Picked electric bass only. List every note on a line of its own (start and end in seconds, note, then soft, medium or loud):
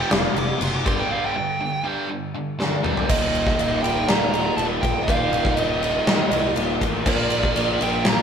0.12 0.27 F1 medium
0.36 0.51 F1 medium
0.61 0.76 F#1 medium
0.86 1.01 G1 medium
3.09 3.51 D#1 medium
3.59 3.80 D#1 medium
3.84 4.05 D#1 medium
4.08 4.50 D#1 medium
4.57 4.78 D#1 medium
4.83 5.03 A#1 medium
5.08 5.29 D#1 medium
5.32 5.53 D#1 medium
5.58 5.99 D#1 medium
6.07 6.28 D#2 medium
6.32 6.52 C2 medium
6.57 6.78 D#1 medium
6.81 7.02 A1 medium
7.06 7.47 A#1 loud
7.56 7.77 A#1 medium
7.81 8.02 A#1 medium
8.06 8.22 A#1 medium